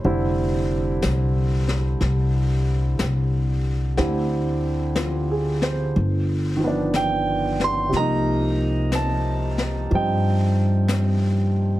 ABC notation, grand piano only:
X:1
M:4/4
L:1/8
Q:"Swing" 1/4=61
K:Fmix
V:1 name="Grand piano"
z8 | z2 (3F _A c z2 g c' | b2 a2 g3 z |]
V:2 name="Grand piano"
[D,G,C=E]8 | [D,C=EG]4 z [_E,F,=B,D]3 | [C,F,B,Ee]4 [F,G,Ce]4 |]